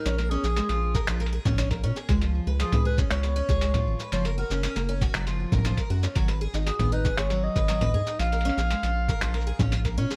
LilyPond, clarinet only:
\new Staff \with { instrumentName = "Clarinet" } { \time 4/4 \key ais \phrygian \tempo 4 = 118 ais'8 gis'2 r4. | r4 gis'8 b'8 cis''2 | cis''8 ais'4 r2 r8 | r4 gis'8 b'8 cis''8 dis''4. |
eis''2.~ eis''8 r8 | }